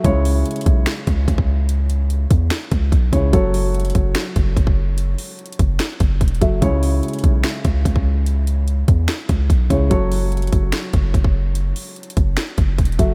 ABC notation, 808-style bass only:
X:1
M:4/4
L:1/8
Q:1/4=146
K:C#m
V:1 name="808-style bass" clef=bass
C,,2 z B,,, z C,, C,,2- | C,,3 E,, z C,, B,,, C,, | F,,,3 F,,, z F,,, F,,,2- | F,,, z2 F,,, z F,,, E,,, F,,, |
C,,2 z B,,, z C,, C,,2- | C,,3 E,, z C,, B,,, C,, | F,,,3 F,,, z F,,, F,,,2- | F,,, z2 F,,, z F,,, E,,, F,,, |]